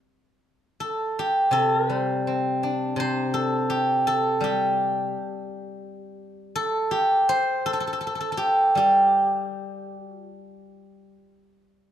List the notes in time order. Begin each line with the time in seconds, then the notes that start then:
0.80 A4
1.19 G4
1.51 C3 A4
1.75 A#4
1.90 G3
1.98 C5
2.27 C4
2.63 D4
2.96 C3 C5
3.34 A4
3.70 G4
4.07 A4
4.41 G3 G4
6.56 A4
6.91 G4
7.29 C5
7.66 A4
7.73 A4
7.80 A4
7.87 A4
7.93 A4
8.01 A4
8.07 A4
8.15 A4
8.21 A4
8.32 A4
8.37 G4
8.75 G3 G4
9.96 F#4
10.25 F4